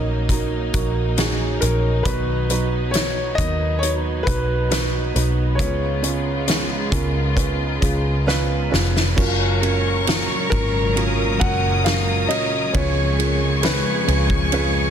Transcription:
Already playing: A#1 A#2 F#3 A#3 C#4 D#4 F#4 A#4 C#5 D#5
0.29 D#4 F#4 A#4, kick, closed hi-hat
0.73 A#1 D#4 F#4 A#4, kick, closed hi-hat
1.16 F#3 C#4 D#4 F#4 G#4 C#5, snare, closed hi-hat
1.61 A#1 F#3 C#4 D#4 F#4 A#4 C#5, closed hi-hat
2.03 B1 B2 D#3 F#3 B3 D#4 F#4 B4, kick, closed hi-hat
2.49 F#3 B3 D#4 F#4 B4, closed hi-hat
2.91 F#3 B3 D#4 B4 C#5, closed hi-hat
2.95 F#4 B4, snare
3.35 D#2 D#4 B4 D#5, kick, closed hi-hat
3.39 F#3 B3 F#4 A#4
3.79 D#4 F#4 B4 C#5
3.83 closed hi-hat
4.23 D#4 B4, kick
4.27 B1 F#4 B4, closed hi-hat
4.70 F#3 B3 D#4 F#4 B4, snare, closed hi-hat
5.14 B1 F#3 B3 D#4 F#4 B4, closed hi-hat
5.55 C#3 G#3 B3 C#4 F4 C#5
5.59 C#2 C#3 F4 B4, kick, closed hi-hat
6.02 B3 C#4 F4 B4 C#5, closed hi-hat
6.47 G#3 B3 C#4 F4 B4 C#5, snare, closed hi-hat
6.91 C#2 B3 C#4 F4 A#4 B4, kick, closed hi-hat
7.36 C#4 F4 B4, kick, closed hi-hat
7.81 C#2 C#4 F4 G#4, kick, closed hi-hat
8.26 G#3 B3 C#4 F4 B4 D#5, snare
8.71 F1 B3 C#4 F4 B4 F5, snare
8.97 snare
9.16 F#1 C#2 A#2 F#3 C#4 F4 F#4 A#4 C#5 A#5 C#6, kick, crash
9.61 C#4 F4 F#4 A#4, ride
10.06 F#3 C#4 F4 F#4 A#4, snare, ride
10.50 G#1 C#4 F4 F#4 A#4, kick, ride
10.95 C#4 F4 F#4 A#4 D#6, ride
11.40 F#1 C#4 F#4 A#4 F#5, kick, ride
11.84 F#3 C#4 F4 F#4 A#4 F5, snare, ride
12.28 C#4 F4 F#4 A#4 C#5 D#5, ride
12.73 C#2 F2 C#3 G#3 B3 C#4 F4 G#4 B4 C#5 G#5 C#6, kick, ride
13.18 B3 C#4 F4 G#4 A#4, ride
13.63 G#3 B3 C#4 F4 G#4 B4 C#5, snare, ride
14.06 C#2 C#4 F4 G#4 B4, ride
14.30 kick
14.52 C#4 F4 G#4 B4, ride

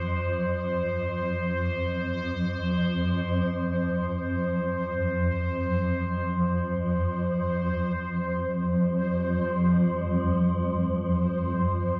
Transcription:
Already playing: F2 F3 C5
7.40 F2 F3 G3 C5
8.15 F4 C5

